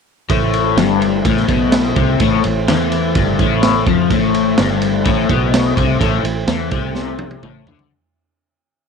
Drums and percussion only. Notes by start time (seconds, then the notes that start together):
0.30 kick, ride
0.54 ride
0.78 snare, ride
1.02 ride
1.25 kick, ride
1.37 snare
1.48 kick, ride
1.72 snare, ride
1.96 kick, ride
2.20 kick, ride
2.44 ride
2.68 snare, ride
2.92 ride
3.15 kick, ride
3.39 kick, ride
3.63 snare, ride
3.86 kick, ride
4.10 kick, ride
4.34 ride
4.58 snare, ride
4.82 ride
5.05 kick, ride
5.29 kick, ride
5.54 snare, ride
5.77 kick, ride
6.01 kick, ride
6.25 ride
6.48 snare, ride
6.71 kick, ride
6.95 snare
7.19 high tom
7.31 high tom
7.43 mid tom
7.67 floor tom
7.79 floor tom